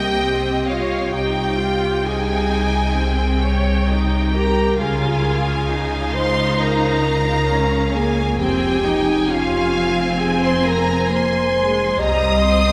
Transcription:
0.00 1.09 C2 medium
0.00 1.10 C3 medium
0.00 0.22 A#3 medium
0.00 0.66 G4 medium
0.00 1.10 D#5 medium
0.00 0.68 G5 medium
0.23 0.68 C4 medium
0.68 1.14 F4 medium
0.68 1.13 C#5 medium
0.68 1.13 F5 medium
1.13 4.76 C2 medium
1.13 4.76 C3 medium
1.13 1.58 D#4 medium
1.13 2.05 G4 medium
1.13 4.75 G5 medium
1.13 2.03 G5 medium
1.58 2.04 F4 medium
2.03 2.97 D#4 medium
2.03 3.85 G#4 medium
2.03 3.87 G#5 medium
2.95 3.42 C4 medium
3.42 3.88 C#5 medium
3.88 4.34 D#4 medium
4.34 4.79 G4 medium
4.34 4.77 A#4 medium
4.34 4.76 A#5 medium
4.79 8.35 C#2 medium
4.79 8.35 C#3 medium
4.79 5.67 F4 medium
4.79 6.15 G#4 medium
4.79 8.36 F5 medium
4.79 6.12 G#5 medium
5.69 7.49 D#4 medium
6.14 6.59 C5 medium
6.14 6.59 C6 medium
6.59 7.94 A#4 medium
6.59 7.95 A#5 medium
7.50 7.95 C#4 medium
7.95 8.40 A#3 medium
7.95 8.40 G#4 medium
7.95 8.39 G#5 medium
8.39 12.00 F1 medium
8.39 12.00 F2 medium
8.39 8.83 C4 medium
8.39 9.29 G4 medium
8.39 9.27 G5 medium
8.39 11.96 G#5 medium
8.84 9.29 D#4 medium
9.29 9.74 C#4 medium
9.29 10.18 F4 medium
9.29 10.19 F5 medium
9.75 11.11 C4 medium
10.19 10.42 G#4 medium
10.19 10.43 G#5 medium
10.42 10.65 C5 medium
10.42 10.66 C6 medium
10.65 11.09 A#4 medium
10.65 11.11 A#5 medium
11.10 11.56 A#3 medium
11.10 12.00 C5 medium
11.10 12.01 C6 medium
11.57 12.00 G#3 medium
12.00 12.72 C2 medium
12.00 12.45 G3 medium
12.00 12.72 D#5 loud
12.00 12.42 A#5 medium
12.00 12.72 D#6 medium
12.44 12.72 C4 medium
12.44 12.72 C6 medium

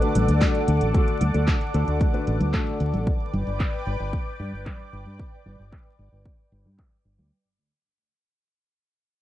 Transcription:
0.00 0.38 D3 medium
0.00 0.38 A3 medium
0.00 0.38 D4 medium
0.00 0.38 F#4 medium
0.00 3.03 A4 medium
0.00 0.38 B4 medium
0.00 3.03 D5 medium
0.00 3.03 F#5 medium
0.00 3.03 D6 medium
0.00 closed hi-hat soft
0.15 0.26 A1 medium
0.15 closed hi-hat medium
0.15 high conga medium
0.28 0.40 D2 medium
0.28 closed hi-hat medium
0.41 0.91 D3 medium
0.41 0.91 A3 medium
0.41 0.91 D4 medium
0.41 0.91 F#4 medium
0.41 0.91 A4 loud
0.41 kick loud
0.41 clap loud
0.41 closed hi-hat medium
0.41 high conga medium
0.55 closed hi-hat soft
0.68 0.80 D2 medium
0.68 closed hi-hat medium
0.81 0.93 A1 medium
0.81 closed hi-hat medium
0.94 1.23 D3 medium
0.94 1.23 A3 medium
0.94 1.23 D4 medium
0.94 1.23 F#4 medium
0.94 1.23 A4 loud
0.94 kick loud
0.94 closed hi-hat medium
1.08 closed hi-hat soft
1.21 1.33 D2 medium
1.21 closed hi-hat medium
1.21 high conga medium
1.34 1.46 D2 medium
1.34 1.52 D3 medium
1.34 1.52 A3 medium
1.34 1.52 D4 medium
1.34 1.52 F#4 medium
1.34 1.52 A4 medium
1.34 closed hi-hat soft
1.48 kick loud
1.48 clap loud
1.48 closed hi-hat soft
1.61 closed hi-hat soft
1.74 1.86 D2 medium
1.74 2.11 D3 medium
1.74 2.11 A3 medium
1.74 2.11 D4 medium
1.74 2.11 F#4 medium
1.74 2.11 A4 loud
1.74 closed hi-hat medium
1.88 1.99 D2 medium
1.88 closed hi-hat medium
2.01 kick loud
2.01 closed hi-hat soft
2.14 2.51 D3 medium
2.14 2.51 A3 medium
2.14 2.51 D4 medium
2.14 2.51 F#4 medium
2.14 2.51 B4 medium
2.14 closed hi-hat soft
2.27 2.39 A1 medium
2.27 closed hi-hat medium
2.41 2.52 D2 medium
2.41 closed hi-hat medium
2.41 high conga medium
2.54 3.04 D3 medium
2.54 3.04 A3 medium
2.54 3.04 D4 medium
2.54 3.04 F#4 medium
2.54 3.04 A4 loud
2.54 kick loud
2.54 clap loud
2.54 closed hi-hat soft
2.67 closed hi-hat soft
2.80 2.92 D2 medium
2.80 closed hi-hat medium
2.94 3.05 A1 medium
2.94 closed hi-hat medium
2.94 high conga medium
3.07 7.28 B4 medium
3.07 7.28 D5 medium
3.07 7.28 G5 medium
3.07 7.28 D6 medium
3.07 kick loud
3.07 closed hi-hat soft
3.20 closed hi-hat soft
3.33 3.45 G1 medium
3.33 closed hi-hat medium
3.33 high conga medium
3.47 3.58 G1 medium
3.47 closed hi-hat soft
3.60 kick loud
3.60 clap loud
3.60 closed hi-hat soft
3.73 closed hi-hat soft
3.87 3.98 G1 medium
3.87 closed hi-hat medium
4.00 4.11 G1 medium
4.00 closed hi-hat soft
4.13 kick loud
4.13 closed hi-hat soft
4.26 closed hi-hat soft
4.40 4.51 G2 medium
4.40 closed hi-hat medium
4.40 high conga medium
4.53 4.65 G1 medium
4.53 closed hi-hat soft
4.66 kick loud
4.66 clap loud
4.66 high conga medium
4.93 5.04 G1 medium
4.93 closed hi-hat medium
5.06 5.18 G2 medium
5.06 closed hi-hat soft
5.19 kick loud
5.46 5.57 G1 medium
5.46 closed hi-hat medium
5.46 high conga medium
5.59 5.71 G1 medium
5.59 closed hi-hat soft
5.72 kick loud
5.72 clap loud
5.99 6.10 G1 medium
5.99 closed hi-hat medium
6.12 6.24 G1 medium
6.25 kick loud
6.52 6.63 G1 medium
6.65 6.77 G2 medium
6.65 high conga medium
6.79 kick loud
6.79 clap loud
7.05 7.17 G1 medium
7.18 7.30 D2 medium
7.18 high conga medium

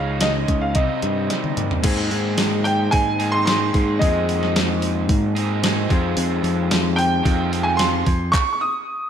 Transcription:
0.00 0.44 C#2 medium
0.00 0.73 C#3 medium
0.00 0.76 C#3 medium
0.00 0.74 G#3 medium
0.00 0.76 G#3 medium
0.00 0.74 C#4 medium
0.00 0.75 D#4 medium
0.00 0.18 F5 medium
0.21 0.76 D#4 medium
0.21 0.63 D#5 medium
0.21 snare medium
0.21 closed hi-hat medium
0.48 0.76 C#2 medium
0.48 0.76 C#4 medium
0.48 kick medium
0.48 closed hi-hat medium
0.61 0.76 F5 medium
0.75 0.88 C2 medium
0.75 1.82 C3 medium
0.75 1.83 G3 medium
0.75 1.84 C4 medium
0.75 1.84 D#4 medium
0.75 1.53 D#5 medium
0.75 kick medium
0.75 closed hi-hat medium
1.02 1.28 G2 medium
1.02 1.84 G3 medium
1.02 closed hi-hat medium
1.30 1.83 D#4 medium
1.30 snare soft
1.30 closed hi-hat medium
1.44 high tom medium
1.57 1.83 A#3 medium
1.57 closed hi-hat medium
1.57 mid tom medium
1.71 floor tom medium
1.83 3.17 G#2 medium
1.83 2.10 G#2 medium
1.83 3.18 D#3 medium
1.83 4.00 G#3 medium
1.83 3.21 G#3 medium
1.83 3.99 A#3 medium
1.83 3.20 C4 loud
1.83 4.02 D#4 medium
1.83 3.20 D#4 medium
1.83 4.03 G#4 medium
1.83 3.19 G#4 medium
1.83 4.03 C5 medium
1.83 kick loud
1.83 open hi-hat medium
1.83 crash loud
2.11 2.89 G#2 medium
2.11 open hi-hat soft
2.38 snare loud
2.38 open hi-hat medium
2.64 2.93 G5 medium
2.64 open hi-hat medium
2.91 3.70 G#2 medium
2.91 3.34 G#5 loud
2.91 kick loud
2.91 open hi-hat medium
3.19 3.45 G#2 medium
3.19 3.45 D#3 medium
3.19 3.47 G#3 medium
3.19 3.47 C4 medium
3.19 3.48 D#4 medium
3.19 3.49 G#4 medium
3.19 open hi-hat soft
3.32 3.44 C6 loud
3.46 3.99 G#2 medium
3.46 3.99 D#3 medium
3.46 4.01 G#3 medium
3.46 4.02 C4 medium
3.46 4.02 D#4 medium
3.46 4.03 G#4 medium
3.46 3.96 C6 loud
3.46 snare loud
3.46 open hi-hat medium
3.74 3.99 G#2 medium
3.74 kick medium
3.74 open hi-hat medium
3.99 5.09 F2 medium
3.99 5.34 G#2 medium
3.99 5.35 D#3 medium
3.99 5.89 G#3 loud
3.99 5.37 G#3 medium
3.99 5.89 A#3 medium
3.99 5.35 C4 medium
3.99 5.91 D#4 loud
3.99 5.36 D#4 medium
3.99 5.92 G#4 medium
3.99 4.50 D#5 medium
3.99 kick loud
3.99 open hi-hat medium
4.04 5.35 G#4 loud
4.04 5.90 C5 loud
4.29 open hi-hat medium
4.43 snare soft
4.56 snare loud
4.56 open hi-hat medium
4.82 open hi-hat medium
5.09 5.86 G#2 loud
5.09 kick loud
5.09 open hi-hat medium
5.35 5.61 G#2 medium
5.35 5.62 D#3 medium
5.35 5.63 G#3 medium
5.35 5.62 C4 medium
5.35 5.65 D#4 medium
5.35 5.65 G#4 medium
5.35 open hi-hat medium
5.62 5.88 G#2 medium
5.62 5.88 D#3 medium
5.62 5.89 G#3 medium
5.62 5.89 C4 medium
5.62 5.92 D#4 medium
5.62 8.56 G#4 medium
5.62 snare loud
5.62 open hi-hat medium
5.89 6.16 F2 medium
5.89 7.22 F3 medium
5.89 8.04 F3 medium
5.89 7.23 G#3 medium
5.89 8.05 C4 medium
5.89 7.24 C4 loud
5.89 8.06 D#4 medium
5.89 7.25 F4 medium
5.89 8.06 G#4 loud
5.89 8.06 C5 loud
5.89 kick loud
5.89 open hi-hat medium
6.17 6.43 F2 medium
6.17 open hi-hat medium
6.43 7.21 F2 medium
6.43 open hi-hat soft
6.71 snare loud
6.71 open hi-hat medium
6.96 7.67 G5 medium
6.96 open hi-hat medium
7.23 8.03 F2 loud
7.23 7.50 F3 medium
7.23 7.50 G#3 medium
7.23 7.51 C4 medium
7.23 7.50 F4 medium
7.23 kick loud
7.23 open hi-hat medium
7.51 8.06 F3 medium
7.51 8.05 G#3 medium
7.51 8.05 C4 medium
7.51 8.04 F4 loud
7.51 open hi-hat medium
7.63 7.79 G#5 medium
7.77 8.28 C6 medium
7.77 snare loud
7.77 open hi-hat medium
8.06 8.32 F2 loud
8.06 kick medium
8.06 open hi-hat medium
8.32 8.51 C#6 loud
8.32 kick loud
8.32 clap medium
8.53 8.60 C#6 medium
8.61 9.10 D#6 medium

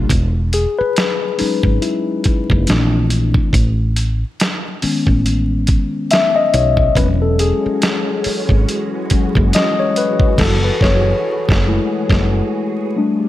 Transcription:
0.00 0.12 G3 medium
0.00 0.12 A3 soft
0.00 0.12 D4 medium
0.10 0.65 E1 loud
0.10 kick medium
0.10 closed hi-hat medium
0.53 0.65 G#4 medium
0.53 closed hi-hat medium
0.79 1.35 B4 loud
0.79 muted fretless electric bass stroke soft
0.96 snare loud
0.96 closed hi-hat medium
1.38 2.63 F#3 soft
1.38 2.63 G#3 soft
1.38 2.64 C#4 medium
1.38 1.79 D#4 medium
1.38 muted fretless electric bass stroke soft
1.38 open hi-hat soft
1.63 1.78 G#1 medium
1.63 kick medium
1.82 3.06 E4 medium
1.82 closed hi-hat medium
2.24 muted fretless electric bass stroke soft
2.24 kick medium
2.24 closed hi-hat medium
2.50 2.65 F#1 medium
2.50 kick medium
2.67 3.38 A#1 loud
2.67 3.49 E3 medium
2.67 3.50 A3 soft
2.67 3.50 C4 soft
2.67 3.50 D4 medium
2.67 snare loud
2.67 closed hi-hat medium
3.10 closed hi-hat medium
3.34 kick loud
3.53 4.23 A1 medium
3.53 kick loud
3.53 closed hi-hat medium
3.96 closed hi-hat medium
4.40 snare loud
4.40 closed hi-hat medium
4.82 6.92 D#3 soft
4.82 6.92 G#3 soft
4.82 6.92 B3 soft
4.82 6.93 C#4 medium
4.82 muted fretless electric bass stroke soft
4.82 open hi-hat soft
5.07 5.76 A1 medium
5.07 kick medium
5.26 closed hi-hat medium
5.67 kick medium
5.67 closed hi-hat medium
6.11 6.36 E5 loud
6.11 snare loud
6.11 closed hi-hat medium
6.36 6.54 D#5 loud
6.54 6.88 B1 medium
6.54 6.93 C#5 medium
6.54 closed hi-hat medium
6.77 kick medium
6.95 7.51 E1 loud
6.95 12.92 E3 medium
6.95 7.55 F#3 medium
6.95 10.35 G#3 medium
6.95 7.56 G#3 soft
6.95 10.35 C#4 medium
6.95 7.56 C#4 medium
6.95 12.92 F#4 medium
6.95 7.08 B4 medium
6.95 kick loud
6.95 closed hi-hat medium
7.22 7.38 A4 medium
7.39 8.21 G#4 medium
7.39 closed hi-hat medium
7.66 muted fretless electric bass stroke soft
7.82 snare loud
7.82 closed hi-hat medium
8.24 muted fretless electric bass stroke soft
8.24 open hi-hat soft
8.49 8.64 G#1 medium
8.49 kick medium
8.69 closed hi-hat medium
9.10 9.49 F#3 soft
9.10 9.49 G#3 soft
9.10 9.50 C#4 medium
9.10 muted fretless electric bass stroke soft
9.10 kick medium
9.10 closed hi-hat medium
9.35 9.50 F#1 medium
9.35 kick medium
9.53 9.80 D#5 loud
9.53 snare loud
9.53 closed hi-hat medium
9.79 9.97 C#5 medium
9.96 10.37 B4 medium
9.96 closed hi-hat medium
10.20 kick loud
10.38 10.69 F#1 loud
10.38 12.93 G#4 medium
10.38 10.62 A4 medium
10.38 kick loud
10.38 snare loud
10.38 crash medium
10.64 10.82 B4 medium
10.81 11.12 F#1 loud
10.81 11.64 C#5 medium
10.81 kick loud
10.81 snare loud
11.49 11.78 F#1 medium
11.49 kick loud
11.49 snare loud
11.67 12.92 G#3 medium
11.67 12.92 A3 medium
11.67 12.92 E4 medium
12.10 12.40 F#1 loud
12.10 kick medium
12.10 snare medium
12.96 13.29 D3 medium
12.96 13.29 G3 medium
12.96 13.29 A3 medium
12.96 13.29 D4 medium
12.96 13.29 F4 medium

